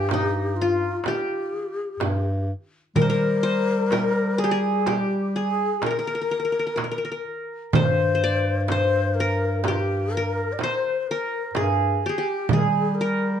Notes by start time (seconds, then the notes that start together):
Already playing: G2 G4
0.09 darbuka tek, frame drum
0.14 D#4
0.34 darbuka ka
0.56 F4, darbuka ka
0.61 F4
1.04 G4, darbuka tek, frame drum
1.08 G4
1.29 darbuka ka
1.52 darbuka ka
2.00 G2, darbuka tek, frame drum
2.48 darbuka ka
2.96 G3 A#4, darbuka dum, frame drum
3.02 C5
3.10 A#4
3.43 C5, darbuka ka
3.91 A#4, darbuka tek, frame drum
4.38 G#4, darbuka ka
4.44 G4
4.51 G#4
4.86 G4, darbuka tek, frame drum
4.91 G4
5.11 darbuka ka
5.35 G#4, darbuka ka
5.82 A#4, darbuka tek, frame drum
5.86 A#4
5.91 A#4
5.99 A#4
6.05 A#4, darbuka ka
6.15 A#4
6.21 A#4
6.30 A#4, darbuka ka
6.40 A#4
6.45 A#4
6.52 A#4
6.59 A#4
6.67 A#4
6.76 A#4, darbuka tek, frame drum
6.84 A#4
6.91 A#4
6.98 A#4
7.05 A#4
7.12 A#4
7.25 darbuka ka
7.73 G2 C5, darbuka dum, frame drum
7.78 A#4
7.83 C5
8.15 C5
8.24 D5
8.66 C5, darbuka tek, frame drum
8.72 C5
9.14 A#4, darbuka ka
9.20 A#4
9.63 G4, darbuka tek, frame drum
9.68 F4 G4
9.80 G4
9.89 darbuka ka
10.13 A#4, darbuka ka
10.52 D5
10.59 C5, darbuka tek, frame drum
10.63 C5
10.84 darbuka ka
11.00 C5
11.08 A#4, darbuka ka
11.53 G2 G#4, darbuka tek, frame drum
11.64 A#4
11.70 G#4
12.03 G4, darbuka ka
12.09 G#4
12.17 G4
12.49 G3 G#4, frame drum, darbuka dum
12.53 G#4 A#4
12.63 G#4
12.95 A#4
13.00 A#4, darbuka ka